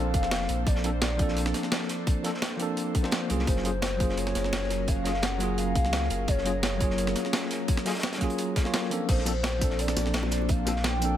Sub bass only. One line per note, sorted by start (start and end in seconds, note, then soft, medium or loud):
0.00 0.16 A#1 loud
0.14 0.48 F1 loud
0.49 0.65 A#1 loud
0.67 1.53 A#1 medium
3.30 3.46 C2 medium
3.47 4.34 F#1 loud
4.35 5.77 F#1 loud
5.76 6.09 C#2 loud
6.11 6.26 F#1 medium
6.28 7.15 F#1 medium
9.09 9.95 A#1 medium
9.96 11.17 A#1 loud